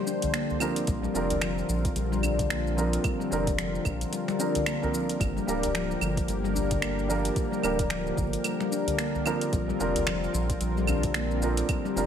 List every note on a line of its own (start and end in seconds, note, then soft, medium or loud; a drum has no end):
0.00 0.84 D3 medium
0.00 0.84 A#3 medium
0.00 0.84 G4 medium
0.00 0.86 C5 medium
0.07 0.21 D4 medium
0.07 shaker medium
0.22 0.33 D3 medium
0.22 closed hi-hat medium
0.22 udu medium
0.22 shaker soft
0.34 0.60 A#3 medium
0.34 finger snap loud
0.34 closed hi-hat soft
0.34 shaker soft
0.50 udu medium
0.50 shaker soft
0.59 1.12 F3 loud
0.59 0.87 F3 medium
0.59 1.12 C4 medium
0.59 1.13 D4 medium
0.59 1.13 A#4 loud
0.59 claves medium
0.59 shaker medium
0.76 closed hi-hat medium
0.76 shaker soft
0.87 1.07 A#1 loud
0.87 5.16 D3 medium
0.87 1.02 G3 medium
0.87 5.16 C4 medium
0.87 5.16 F4 medium
0.87 12.06 A#4 medium
0.87 kick loud
0.87 closed hi-hat soft
0.87 shaker soft
1.03 1.14 G3 medium
1.03 shaker soft
1.14 1.62 F1 medium
1.14 1.31 F3 medium
1.14 1.31 C4 medium
1.14 1.31 D4 medium
1.14 1.32 A#4 loud
1.14 shaker medium
1.30 closed hi-hat soft
1.30 udu medium
1.30 shaker soft
1.42 1.57 F3 medium
1.42 finger snap medium
1.42 closed hi-hat soft
1.42 claves medium
1.42 shaker soft
1.58 shaker soft
1.69 1.88 A#1 loud
1.69 1.95 F3 medium
1.69 shaker medium
1.85 kick loud
1.85 closed hi-hat soft
1.85 shaker soft
1.96 2.98 A#1 medium
1.96 2.11 G3 medium
1.96 closed hi-hat soft
1.96 shaker soft
2.12 2.23 G3 loud
2.12 shaker soft
2.22 2.38 D4 medium
2.22 udu medium
2.22 claves medium
2.22 shaker medium
2.39 2.49 D3 medium
2.39 kick medium
2.39 closed hi-hat soft
2.39 udu medium
2.39 shaker soft
2.50 2.76 A#3 medium
2.50 finger snap loud
2.50 closed hi-hat soft
2.50 shaker soft
2.67 shaker soft
2.76 3.28 F3 medium
2.76 3.03 F3 medium
2.76 3.29 C4 medium
2.76 3.29 D4 medium
2.76 3.29 A#4 loud
2.76 shaker medium
2.93 closed hi-hat soft
2.93 shaker soft
3.04 3.19 G3 medium
3.04 kick loud
3.04 closed hi-hat soft
3.04 claves medium
3.04 shaker soft
3.20 3.31 G3 loud
3.20 shaker soft
3.31 3.79 F1 medium
3.31 3.47 F3 medium
3.31 3.47 C4 medium
3.31 3.48 D4 medium
3.31 3.48 A#4 loud
3.31 shaker medium
3.47 kick loud
3.47 closed hi-hat medium
3.47 shaker soft
3.58 3.74 F3 medium
3.58 finger snap loud
3.58 closed hi-hat soft
3.58 shaker soft
3.75 shaker soft
3.85 4.04 A#1 loud
3.85 4.11 F3 medium
3.85 kick loud
3.85 claves medium
3.85 shaker medium
4.01 closed hi-hat soft
4.01 shaker soft
4.13 4.27 G3 medium
4.13 closed hi-hat soft
4.13 shaker soft
4.28 4.39 G3 loud
4.28 finger snap soft
4.28 shaker soft
4.38 4.55 F3 medium
4.38 4.55 C4 medium
4.38 4.54 D4 medium
4.38 4.56 D4 medium
4.38 4.56 A#4 medium
4.38 shaker medium
4.55 4.65 D3 medium
4.55 closed hi-hat soft
4.55 udu medium
4.55 shaker soft
4.66 4.93 A#3 medium
4.66 finger snap loud
4.66 closed hi-hat soft
4.66 claves medium
4.66 shaker soft
4.82 5.19 F3 medium
4.82 5.19 C4 medium
4.82 5.19 D4 medium
4.82 5.20 A#4 medium
4.82 udu medium
4.82 shaker soft
4.93 5.19 F3 medium
4.93 shaker medium
5.09 closed hi-hat soft
5.09 shaker soft
5.20 5.39 G1 loud
5.20 9.49 D3 medium
5.20 5.35 G3 medium
5.20 9.49 A#3 medium
5.20 9.49 G4 medium
5.20 kick loud
5.20 closed hi-hat soft
5.20 claves medium
5.20 shaker soft
5.36 5.47 G3 medium
5.36 shaker soft
5.47 5.95 D1 medium
5.47 5.63 G3 medium
5.47 5.64 A#3 medium
5.47 5.64 D4 medium
5.47 5.64 A#4 loud
5.47 shaker medium
5.63 closed hi-hat medium
5.63 udu medium
5.63 shaker soft
5.75 5.90 F3 loud
5.75 finger snap medium
5.75 closed hi-hat soft
5.75 shaker soft
5.91 shaker soft
6.01 6.20 G1 loud
6.01 6.28 F3 medium
6.01 claves medium
6.01 shaker medium
6.17 kick loud
6.17 closed hi-hat soft
6.17 shaker soft
6.28 7.30 G1 loud
6.28 6.43 G3 medium
6.28 closed hi-hat soft
6.28 shaker soft
6.44 6.55 G3 loud
6.44 shaker soft
6.55 6.70 D4 medium
6.55 udu medium
6.55 shaker medium
6.71 6.81 D3 medium
6.71 kick loud
6.71 closed hi-hat soft
6.71 udu medium
6.71 shaker soft
6.82 7.09 A#3 medium
6.82 finger snap loud
6.82 closed hi-hat soft
6.82 claves medium
6.82 shaker soft
6.99 shaker soft
7.08 7.36 F3 medium
7.08 7.60 G3 loud
7.08 7.61 A#3 medium
7.08 7.61 D4 medium
7.08 7.61 A#4 loud
7.08 shaker medium
7.25 closed hi-hat medium
7.25 shaker soft
7.36 7.51 G3 medium
7.36 kick loud
7.36 closed hi-hat soft
7.36 shaker soft
7.52 7.63 G3 loud
7.52 shaker soft
7.63 8.11 D1 medium
7.63 7.79 G3 medium
7.63 7.80 A#3 medium
7.63 7.80 D4 medium
7.63 7.80 A#4 loud
7.63 claves medium
7.63 shaker medium
7.79 kick loud
7.79 closed hi-hat medium
7.79 shaker soft
7.90 8.06 F3 loud
7.90 finger snap medium
7.90 closed hi-hat soft
7.90 shaker soft
8.07 shaker soft
8.17 8.36 G1 loud
8.17 8.44 F3 medium
8.17 kick loud
8.17 shaker medium
8.33 closed hi-hat medium
8.33 shaker soft
8.44 8.59 G3 medium
8.44 closed hi-hat soft
8.44 claves medium
8.44 shaker soft
8.60 8.71 G3 loud
8.60 finger snap soft
8.60 shaker soft
8.72 8.86 D4 medium
8.72 shaker medium
8.87 8.98 D3 medium
8.87 closed hi-hat soft
8.87 udu medium
8.87 shaker soft
8.99 9.25 A#3 medium
8.99 finger snap medium
8.99 closed hi-hat soft
8.99 shaker soft
9.15 udu medium
9.15 shaker soft
9.25 9.77 F3 loud
9.25 9.52 F3 medium
9.25 9.77 C4 medium
9.25 9.78 D4 medium
9.25 9.78 A#4 loud
9.25 claves medium
9.25 shaker medium
9.41 closed hi-hat medium
9.41 shaker soft
9.52 9.72 A#1 medium
9.52 12.06 D3 medium
9.52 9.68 G3 medium
9.52 12.06 C4 medium
9.52 11.67 F4 medium
9.52 kick loud
9.52 closed hi-hat soft
9.52 shaker soft
9.69 9.80 G3 loud
9.69 shaker soft
9.79 10.27 F1 medium
9.79 9.96 F3 loud
9.79 9.96 C4 medium
9.79 9.96 D4 medium
9.79 9.97 A#4 loud
9.79 shaker medium
9.96 closed hi-hat medium
9.96 udu medium
9.96 shaker soft
10.07 10.22 F3 medium
10.07 finger snap medium
10.07 closed hi-hat soft
10.07 claves medium
10.07 shaker soft
10.24 shaker soft
10.34 10.53 A#1 loud
10.34 10.60 F3 medium
10.34 shaker medium
10.50 kick medium
10.50 closed hi-hat medium
10.50 shaker soft
10.61 11.62 A#1 loud
10.61 10.76 G3 medium
10.61 closed hi-hat soft
10.61 shaker soft
10.77 10.88 G3 loud
10.77 shaker soft
10.87 11.03 D4 medium
10.87 udu medium
10.87 claves medium
10.87 shaker medium
11.03 11.14 D3 medium
11.03 kick medium
11.03 closed hi-hat medium
11.03 udu medium
11.03 shaker soft
11.14 11.41 A#3 medium
11.14 finger snap loud
11.14 closed hi-hat soft
11.14 shaker soft
11.31 shaker soft
11.42 11.93 F3 loud
11.42 11.68 F3 medium
11.42 11.94 C4 medium
11.42 11.94 D4 medium
11.42 11.94 A#4 loud
11.42 shaker medium
11.57 closed hi-hat medium
11.57 shaker soft
11.69 11.84 G3 medium
11.69 12.06 G4 medium
11.69 kick loud
11.69 closed hi-hat soft
11.69 claves medium
11.69 shaker soft
11.85 11.96 G3 loud
11.85 shaker soft
11.96 12.06 F1 medium
11.96 12.06 F3 medium
11.96 12.06 C4 medium
11.96 12.06 D4 medium
11.96 12.06 A#4 loud
11.96 shaker medium